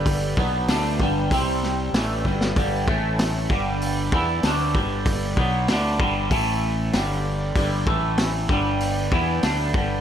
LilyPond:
<<
  \new Staff \with { instrumentName = "Harmonium" } { \time 4/4 \key g \major \tempo 4 = 96 << { <b d' b'>2 <g c' c''>4 <b d' b'>4~ | <b d' b'>8 <a e' e''>4 <d' d'' g''>2~ <d' d'' g''>8~ | <d' d'' g''>2 <a e' e''>4 <d' g' d''>4~ | <d' g' d''>8 <a e' e''>4 <b d' b'>2~ <b d' b'>8 | } \\ { g''2 g'2~ | g'8 a'4 b'2~ b'8~ | b'2 a'4 b'4~ | b'8 a'4 g''2~ g''8 | } >> }
  \new Staff \with { instrumentName = "Clean electric guitar" } { \clef bass \time 4/4 \key g \major <g, d g>8 <b, fis b>8 <d a d'>8 <g, d g>8 <c g c'>4 <a, e a>8 <g, d g>8 | <g, d g>8 <a, e a>4 <g, d g>4 <e b e'>8 <d a d'>8 <g, d g>8~ | <g, d g>8 <b, fis b>8 <d a d'>8 <g, d g>8 <a, e a>4 <g, d g>4 | <g, d g>8 <a, e a>4 <g, d g>4 <e b e'>8 <d a d'>8 <g, d g>8 | }
  \new Staff \with { instrumentName = "Fingered electric bass" } { \clef bass \time 4/4 \key g \major g,,8 b,,8 d,8 g,,8 c,4 a,,8 g,,8 | g,,8 a,,4 g,,4 e,8 d,8 g,,8~ | g,,8 b,,8 d,8 g,,8 a,,4 g,,4 | g,,8 a,,4 g,,4 e,8 d,8 g,,8 | }
  \new DrumStaff \with { instrumentName = "Drums" } \drummode { \time 4/4 <hho bd>8 bd8 <hho sn>8 bd8 <hho bd>8 sn8 <hho sn>8 bd16 sn16 | <hho bd>8 bd8 <hho sn>8 bd8 hho8 bd8 <hho sn>8 bd8 | <hho bd>8 bd8 <hho sn>8 bd8 <hho bd>4 <hho sn>4 | <hho bd>8 bd8 <hho sn>8 bd8 hho8 bd8 <hho sn>8 bd8 | }
>>